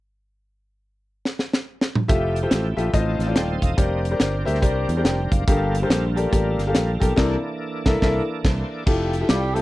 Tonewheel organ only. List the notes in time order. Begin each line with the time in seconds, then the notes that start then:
2.10 F3 A3 E4 G4
2.94 F3 C4 D#4 A4
3.37 C5
3.63 D#5
3.78 G3 C4 C#4 A#4
3.84 D4
5.49 G3 A3 F4 A4
5.53 A#3
7.19 E3 A#3 D4 A4
8.45 C5
8.72 D5